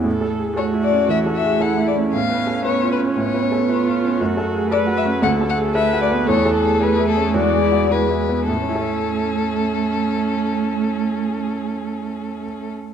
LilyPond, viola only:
\new Staff \with { instrumentName = "Viola" } { \time 4/4 \key a \major \tempo 4 = 113 a'4 fis'2 e'4 | cis'2. eis'4 | fis'4 b'4 a'4 b'4 | a'4 gis'4 fis'8 e'8 gis'8 r8 |
cis'1~ | cis'1 | }